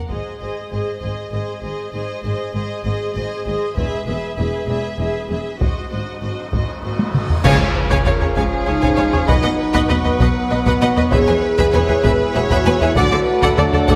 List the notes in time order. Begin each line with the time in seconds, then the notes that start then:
Already playing: A#3
0.10 G#1 G#2 G#3 C4 G#4 C5 D#5, taiko
0.40 G#1 G#2 G#4 C5 D#5
0.71 G#1 G#2 G#4 C5 D#5
1.01 G#1 G#2 G#4 C5 D#5, taiko
1.32 G#1 G#2 G#4 C5 D#5
1.62 G#1 G#2 G#4 C5 D#5
1.92 G#1 G#2 G#4 C5 D#5
2.24 G#1 G#2 G#4 C5 D#5
2.54 G#1 G#2 G#4 C5 D#5
2.85 G#1 G#2 G#4 C5 D#5
3.15 G#1 G#2 G#4 C5 D#5
3.46 G#1 G#2 G#4 C5 D#5
3.77 E1 E2 G#3 B3 G#4 B4 E5, taiko
4.07 E1 E2 G#4 B4 E5
4.37 E1 E2 G#4 B4 E5
4.68 E1 E2 G#4 B4 E5
4.99 E1 E2 G#4 B4 E5
5.30 E1 E2 G#4 B4 E5
5.60 G#1 G#2 F#3 C4 F#4 C5 D#5, taiko, reverse cymbal
5.91 G#1 G#2 F#4 C5 D#5
6.22 G#1 G#2 F#4 C5 D#5
6.52 G#1 G#2 F#4 C5 D#5, taiko
6.84 G#1 G#2 A#3 F#4 C5 D#5
6.99 taiko high
7.14 G#1 G#2 F#4 C5 D#5, taiko mid
7.30 taiko low
7.43 C#2 C#3 F3 C#4 F4 G#4 C#5 F5 G#5, concert bass drum, taiko, crash, sub drop
7.60 C#3 G#4 C#5 F5
7.76 B4
7.91 C#3 G#4 C#5 F5 G#5, taiko
8.06 C#2 C#3 G#4 A#4 C#5 F5, taiko low
8.21 C#3 G#4 C#5, taiko low
8.36 C#2 C#3 G#4 C#5 F5 G#5, taiko
8.66 C#2 C#3 D#4 G#4 C#5
8.81 C#3 G#4 C#5 F5 G#5, taiko
8.96 C#2 C#3 G#4 C#5 F5
9.13 C#3 C#4 G#4 C#5, taiko low
9.27 B1 B2 F#3 B3 D#4 F#4 B4 D#5 F#5 B5, taiko
9.43 B2 B4 D#5 F#5
9.60 B4
9.74 B2 B4 D#5 F#5 B5, taiko
9.89 B1 B2 B3 B4 D#5 F#5, taiko low
10.04 B2 B4 D#5, taiko low
10.20 B1 B2 B4 D#5 F#5 B5, taiko
10.51 B1 B2 B3 B4 D#5
10.66 B2 B4 D#5 F#5 B5, taiko
10.81 B1 B2 B4 D#5 F#5
10.97 B2 B4 D#5, taiko low
11.11 E1 E2 E3 E4 G#4 B4 C#5 E5 B5, taiko
11.27 E2 G#4 B4 G#5
11.43 B4
11.58 E2 G#4 B4 E5 B5, taiko
11.73 E1 E2 G#4 B4 C#5 G#5, taiko low
11.89 E2 G#4 B4 E5, taiko low
12.04 E1 E2 G#4 B4 E5 B5, taiko
12.34 E1 E2 F#4 G#4 B4 C#5 E5
12.50 E2 G#4 B4 E5 B5, taiko
12.66 E1 E2 G#4 B4 G#5
12.80 E2 E4 G#4 B4 E5, taiko low
12.95 D2 D3 F#3 A3 D4 F#4 A4 D5 F#5, taiko
13.11 D3 A4 D5
13.25 B4
13.42 D3 A4 D5 F#5, taiko
13.56 D2 D3 D4 A4 D5, taiko low
13.72 D3 A4 D5, taiko low
13.86 D2 D3 F#4 A4 D5 F#5, taiko